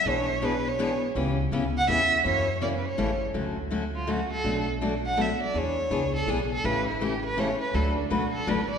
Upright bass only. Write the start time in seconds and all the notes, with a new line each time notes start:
0.05 B1
1.15 C#2
1.51 D2
1.88 E2
2.25 F#2
2.98 A1
3.34 D2
4.45 B1
5.54 E2
5.91 C#2
6.27 B1
6.64 A1
7.74 D2
8.10 B1
8.47 A1